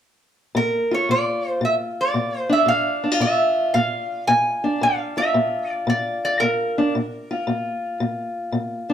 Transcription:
0, 0, Header, 1, 3, 480
1, 0, Start_track
1, 0, Tempo, 533333
1, 496, Time_signature, 4, 2, 24, 8
1, 8041, End_track
2, 0, Start_track
2, 0, Title_t, "Resonator guitar played with a steel bar"
2, 0, Program_c, 0, 25
2, 509, Note_on_c, 0, 70, 78
2, 833, Note_off_c, 0, 70, 0
2, 850, Note_on_c, 0, 73, 65
2, 993, Note_off_c, 0, 73, 0
2, 997, Note_on_c, 0, 74, 82
2, 1432, Note_off_c, 0, 74, 0
2, 1483, Note_on_c, 0, 76, 70
2, 1566, Note_off_c, 0, 76, 0
2, 1807, Note_on_c, 0, 74, 69
2, 2238, Note_off_c, 0, 74, 0
2, 2273, Note_on_c, 0, 76, 67
2, 2412, Note_off_c, 0, 76, 0
2, 2416, Note_on_c, 0, 77, 96
2, 2888, Note_off_c, 0, 77, 0
2, 2892, Note_on_c, 0, 76, 83
2, 3361, Note_off_c, 0, 76, 0
2, 3365, Note_on_c, 0, 77, 86
2, 3843, Note_off_c, 0, 77, 0
2, 3847, Note_on_c, 0, 80, 96
2, 4343, Note_off_c, 0, 80, 0
2, 4348, Note_on_c, 0, 77, 92
2, 4655, Note_off_c, 0, 77, 0
2, 4659, Note_on_c, 0, 76, 90
2, 5136, Note_off_c, 0, 76, 0
2, 5136, Note_on_c, 0, 74, 90
2, 5307, Note_off_c, 0, 74, 0
2, 5307, Note_on_c, 0, 74, 78
2, 5612, Note_off_c, 0, 74, 0
2, 5623, Note_on_c, 0, 74, 73
2, 5759, Note_on_c, 0, 70, 73
2, 5781, Note_off_c, 0, 74, 0
2, 6690, Note_off_c, 0, 70, 0
2, 8041, End_track
3, 0, Start_track
3, 0, Title_t, "Steel-string acoustic guitar"
3, 0, Program_c, 1, 25
3, 493, Note_on_c, 1, 46, 70
3, 822, Note_on_c, 1, 65, 47
3, 942, Note_off_c, 1, 46, 0
3, 982, Note_on_c, 1, 46, 55
3, 1426, Note_off_c, 1, 46, 0
3, 1448, Note_on_c, 1, 46, 70
3, 1899, Note_off_c, 1, 46, 0
3, 1927, Note_on_c, 1, 46, 60
3, 2245, Note_on_c, 1, 62, 47
3, 2378, Note_off_c, 1, 46, 0
3, 2393, Note_on_c, 1, 46, 64
3, 2729, Note_off_c, 1, 65, 0
3, 2732, Note_off_c, 1, 62, 0
3, 2732, Note_on_c, 1, 62, 50
3, 2804, Note_off_c, 1, 62, 0
3, 2804, Note_on_c, 1, 65, 46
3, 2851, Note_off_c, 1, 46, 0
3, 2881, Note_on_c, 1, 46, 69
3, 3334, Note_off_c, 1, 46, 0
3, 3370, Note_on_c, 1, 46, 67
3, 3819, Note_off_c, 1, 46, 0
3, 3851, Note_on_c, 1, 46, 68
3, 4174, Note_on_c, 1, 62, 48
3, 4299, Note_off_c, 1, 46, 0
3, 4326, Note_off_c, 1, 65, 0
3, 4332, Note_on_c, 1, 46, 67
3, 4653, Note_on_c, 1, 65, 54
3, 4780, Note_off_c, 1, 46, 0
3, 4808, Note_on_c, 1, 46, 61
3, 5258, Note_off_c, 1, 46, 0
3, 5281, Note_on_c, 1, 46, 75
3, 5734, Note_off_c, 1, 46, 0
3, 5770, Note_on_c, 1, 46, 62
3, 6099, Note_off_c, 1, 62, 0
3, 6102, Note_on_c, 1, 62, 49
3, 6219, Note_off_c, 1, 46, 0
3, 6232, Note_off_c, 1, 65, 0
3, 6237, Note_off_c, 1, 62, 0
3, 6255, Note_on_c, 1, 46, 64
3, 6576, Note_on_c, 1, 65, 55
3, 6702, Note_off_c, 1, 46, 0
3, 6723, Note_on_c, 1, 46, 64
3, 7176, Note_off_c, 1, 46, 0
3, 7202, Note_on_c, 1, 46, 67
3, 7656, Note_off_c, 1, 46, 0
3, 7672, Note_on_c, 1, 46, 60
3, 8006, Note_on_c, 1, 62, 47
3, 8041, Note_off_c, 1, 46, 0
3, 8041, Note_off_c, 1, 62, 0
3, 8041, Note_off_c, 1, 65, 0
3, 8041, End_track
0, 0, End_of_file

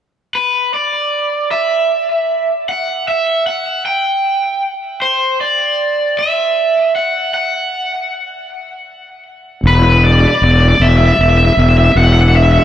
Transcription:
0, 0, Header, 1, 3, 480
1, 0, Start_track
1, 0, Key_signature, 1, "minor"
1, 0, Tempo, 774194
1, 210, Time_signature, 6, 3, 24, 8
1, 7839, End_track
2, 0, Start_track
2, 0, Title_t, "Overdriven electric guitar"
2, 0, Program_c, 0, 29
2, 217, Note_on_c, 0, 71, 42
2, 455, Note_off_c, 0, 71, 0
2, 458, Note_on_c, 0, 74, 51
2, 936, Note_off_c, 0, 74, 0
2, 938, Note_on_c, 0, 76, 45
2, 1664, Note_off_c, 0, 76, 0
2, 1667, Note_on_c, 0, 78, 54
2, 1908, Note_off_c, 0, 78, 0
2, 1911, Note_on_c, 0, 76, 57
2, 2148, Note_off_c, 0, 76, 0
2, 2150, Note_on_c, 0, 78, 51
2, 2368, Note_off_c, 0, 78, 0
2, 2392, Note_on_c, 0, 79, 49
2, 2902, Note_off_c, 0, 79, 0
2, 3111, Note_on_c, 0, 72, 53
2, 3330, Note_off_c, 0, 72, 0
2, 3353, Note_on_c, 0, 74, 54
2, 3836, Note_on_c, 0, 76, 52
2, 3842, Note_off_c, 0, 74, 0
2, 4311, Note_off_c, 0, 76, 0
2, 4314, Note_on_c, 0, 78, 51
2, 4543, Note_off_c, 0, 78, 0
2, 4551, Note_on_c, 0, 78, 57
2, 5720, Note_off_c, 0, 78, 0
2, 5997, Note_on_c, 0, 71, 68
2, 6043, Note_off_c, 0, 71, 0
2, 6045, Note_on_c, 0, 71, 49
2, 6093, Note_off_c, 0, 71, 0
2, 6095, Note_on_c, 0, 71, 58
2, 6134, Note_off_c, 0, 71, 0
2, 6137, Note_on_c, 0, 71, 51
2, 6184, Note_off_c, 0, 71, 0
2, 6189, Note_on_c, 0, 71, 51
2, 6226, Note_off_c, 0, 71, 0
2, 6228, Note_on_c, 0, 74, 75
2, 6273, Note_off_c, 0, 74, 0
2, 6276, Note_on_c, 0, 74, 53
2, 6324, Note_off_c, 0, 74, 0
2, 6326, Note_on_c, 0, 74, 69
2, 6372, Note_off_c, 0, 74, 0
2, 6374, Note_on_c, 0, 74, 61
2, 6420, Note_off_c, 0, 74, 0
2, 6422, Note_on_c, 0, 74, 70
2, 6466, Note_off_c, 0, 74, 0
2, 6468, Note_on_c, 0, 74, 60
2, 6517, Note_off_c, 0, 74, 0
2, 6520, Note_on_c, 0, 74, 67
2, 6569, Note_off_c, 0, 74, 0
2, 6575, Note_on_c, 0, 74, 55
2, 6622, Note_off_c, 0, 74, 0
2, 6625, Note_on_c, 0, 74, 60
2, 6664, Note_off_c, 0, 74, 0
2, 6666, Note_on_c, 0, 74, 51
2, 6706, Note_on_c, 0, 76, 64
2, 6715, Note_off_c, 0, 74, 0
2, 6750, Note_off_c, 0, 76, 0
2, 6752, Note_on_c, 0, 76, 45
2, 6798, Note_off_c, 0, 76, 0
2, 6800, Note_on_c, 0, 76, 57
2, 6849, Note_off_c, 0, 76, 0
2, 6855, Note_on_c, 0, 76, 51
2, 6895, Note_off_c, 0, 76, 0
2, 6898, Note_on_c, 0, 76, 59
2, 6946, Note_off_c, 0, 76, 0
2, 6954, Note_on_c, 0, 76, 51
2, 7001, Note_off_c, 0, 76, 0
2, 7003, Note_on_c, 0, 76, 60
2, 7050, Note_off_c, 0, 76, 0
2, 7052, Note_on_c, 0, 76, 49
2, 7097, Note_off_c, 0, 76, 0
2, 7100, Note_on_c, 0, 76, 63
2, 7147, Note_off_c, 0, 76, 0
2, 7149, Note_on_c, 0, 76, 53
2, 7190, Note_off_c, 0, 76, 0
2, 7193, Note_on_c, 0, 76, 55
2, 7242, Note_off_c, 0, 76, 0
2, 7247, Note_on_c, 0, 76, 53
2, 7296, Note_off_c, 0, 76, 0
2, 7298, Note_on_c, 0, 76, 52
2, 7341, Note_off_c, 0, 76, 0
2, 7344, Note_on_c, 0, 76, 49
2, 7388, Note_off_c, 0, 76, 0
2, 7391, Note_on_c, 0, 76, 52
2, 7420, Note_off_c, 0, 76, 0
2, 7423, Note_on_c, 0, 78, 74
2, 7462, Note_off_c, 0, 78, 0
2, 7465, Note_on_c, 0, 78, 56
2, 7513, Note_off_c, 0, 78, 0
2, 7519, Note_on_c, 0, 78, 69
2, 7567, Note_off_c, 0, 78, 0
2, 7569, Note_on_c, 0, 78, 63
2, 7614, Note_off_c, 0, 78, 0
2, 7616, Note_on_c, 0, 78, 65
2, 7660, Note_off_c, 0, 78, 0
2, 7662, Note_on_c, 0, 76, 81
2, 7707, Note_off_c, 0, 76, 0
2, 7709, Note_on_c, 0, 76, 63
2, 7757, Note_off_c, 0, 76, 0
2, 7762, Note_on_c, 0, 76, 84
2, 7801, Note_off_c, 0, 76, 0
2, 7804, Note_on_c, 0, 76, 63
2, 7839, Note_off_c, 0, 76, 0
2, 7839, End_track
3, 0, Start_track
3, 0, Title_t, "Fingered electric bass"
3, 0, Program_c, 1, 33
3, 5974, Note_on_c, 1, 28, 74
3, 6357, Note_off_c, 1, 28, 0
3, 6458, Note_on_c, 1, 28, 75
3, 6649, Note_off_c, 1, 28, 0
3, 6694, Note_on_c, 1, 28, 83
3, 6886, Note_off_c, 1, 28, 0
3, 6935, Note_on_c, 1, 28, 60
3, 7126, Note_off_c, 1, 28, 0
3, 7173, Note_on_c, 1, 28, 72
3, 7364, Note_off_c, 1, 28, 0
3, 7411, Note_on_c, 1, 28, 77
3, 7792, Note_off_c, 1, 28, 0
3, 7839, End_track
0, 0, End_of_file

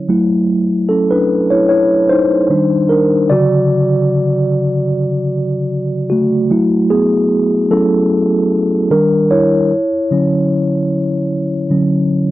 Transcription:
0, 0, Header, 1, 2, 480
1, 0, Start_track
1, 0, Tempo, 801068
1, 59, Time_signature, 4, 2, 24, 8
1, 7377, End_track
2, 0, Start_track
2, 0, Title_t, "Tine electric piano"
2, 0, Program_c, 0, 4
2, 0, Control_c, 0, 64, 127
2, 52, Note_on_c, 0, 54, 52
2, 56, Note_on_c, 0, 57, 46
2, 59, Note_on_c, 0, 64, 51
2, 67, Control_c, 0, 64, 0
2, 169, Control_c, 0, 64, 127
2, 381, Note_off_c, 0, 54, 0
2, 383, Note_off_c, 0, 57, 0
2, 385, Note_off_c, 0, 64, 0
2, 532, Note_on_c, 0, 69, 65
2, 541, Note_on_c, 0, 61, 43
2, 660, Note_off_c, 0, 61, 0
2, 663, Note_on_c, 0, 71, 74
2, 669, Note_off_c, 0, 69, 0
2, 672, Note_on_c, 0, 62, 57
2, 893, Note_off_c, 0, 62, 0
2, 901, Note_on_c, 0, 73, 69
2, 911, Note_on_c, 0, 64, 57
2, 913, Note_off_c, 0, 71, 0
2, 1007, Note_off_c, 0, 73, 0
2, 1012, Note_off_c, 0, 64, 0
2, 1013, Note_on_c, 0, 73, 84
2, 1022, Note_on_c, 0, 64, 62
2, 1238, Note_off_c, 0, 73, 0
2, 1243, Note_off_c, 0, 64, 0
2, 1255, Note_on_c, 0, 72, 90
2, 1264, Note_on_c, 0, 63, 71
2, 1495, Note_on_c, 0, 51, 48
2, 1499, Note_on_c, 0, 55, 44
2, 1501, Note_on_c, 0, 62, 57
2, 1505, Control_c, 0, 64, 0
2, 1607, Control_c, 0, 64, 127
2, 1716, Note_off_c, 0, 63, 0
2, 1734, Note_on_c, 0, 70, 72
2, 1740, Note_off_c, 0, 62, 0
2, 1747, Note_on_c, 0, 62, 52
2, 1750, Note_off_c, 0, 72, 0
2, 1822, Note_off_c, 0, 51, 0
2, 1824, Note_off_c, 0, 55, 0
2, 1965, Note_off_c, 0, 62, 0
2, 1975, Note_on_c, 0, 74, 96
2, 1978, Note_on_c, 0, 50, 58
2, 1982, Note_off_c, 0, 70, 0
2, 1982, Note_on_c, 0, 54, 45
2, 1985, Control_c, 0, 64, 0
2, 1986, Note_on_c, 0, 49, 63
2, 1987, Note_on_c, 0, 66, 76
2, 2107, Control_c, 0, 64, 127
2, 2304, Note_off_c, 0, 50, 0
2, 2306, Note_off_c, 0, 54, 0
2, 2308, Note_off_c, 0, 49, 0
2, 2911, Note_off_c, 0, 74, 0
2, 2917, Note_off_c, 0, 66, 0
2, 3654, Note_on_c, 0, 66, 66
2, 3665, Note_on_c, 0, 57, 55
2, 3892, Note_off_c, 0, 57, 0
2, 3896, Note_on_c, 0, 54, 52
2, 3899, Note_on_c, 0, 57, 51
2, 3903, Note_on_c, 0, 64, 59
2, 3904, Control_c, 0, 64, 0
2, 3992, Control_c, 0, 64, 127
2, 4137, Note_on_c, 0, 68, 81
2, 4143, Note_on_c, 0, 59, 60
2, 4149, Note_off_c, 0, 66, 0
2, 4595, Note_off_c, 0, 59, 0
2, 4609, Note_off_c, 0, 54, 0
2, 4612, Note_off_c, 0, 57, 0
2, 4615, Note_off_c, 0, 64, 0
2, 4617, Note_on_c, 0, 54, 47
2, 4620, Note_on_c, 0, 57, 39
2, 4621, Note_on_c, 0, 69, 71
2, 4622, Note_on_c, 0, 64, 49
2, 4625, Note_on_c, 0, 61, 61
2, 4630, Note_off_c, 0, 68, 0
2, 4832, Note_off_c, 0, 54, 0
2, 4834, Note_off_c, 0, 57, 0
2, 4835, Note_off_c, 0, 64, 0
2, 5314, Note_off_c, 0, 69, 0
2, 5316, Note_off_c, 0, 61, 0
2, 5336, Note_on_c, 0, 51, 51
2, 5340, Note_on_c, 0, 55, 49
2, 5341, Note_on_c, 0, 70, 83
2, 5342, Note_on_c, 0, 62, 62
2, 5343, Control_c, 0, 64, 0
2, 5453, Control_c, 0, 64, 127
2, 5563, Note_off_c, 0, 62, 0
2, 5577, Note_on_c, 0, 73, 78
2, 5584, Note_on_c, 0, 64, 64
2, 5585, Note_off_c, 0, 70, 0
2, 5662, Note_off_c, 0, 51, 0
2, 5664, Note_off_c, 0, 55, 0
2, 5824, Control_c, 0, 64, 0
2, 5937, Control_c, 0, 64, 127
2, 6057, Note_on_c, 0, 50, 50
2, 6061, Note_on_c, 0, 54, 42
2, 6065, Note_on_c, 0, 61, 53
2, 6512, Note_off_c, 0, 73, 0
2, 6515, Note_off_c, 0, 64, 0
2, 6752, Note_off_c, 0, 50, 0
2, 6754, Note_off_c, 0, 54, 0
2, 6756, Note_off_c, 0, 61, 0
2, 7012, Note_on_c, 0, 50, 48
2, 7016, Note_on_c, 0, 54, 43
2, 7018, Note_on_c, 0, 61, 49
2, 7230, Note_off_c, 0, 50, 0
2, 7232, Note_off_c, 0, 54, 0
2, 7233, Note_off_c, 0, 61, 0
2, 7377, End_track
0, 0, End_of_file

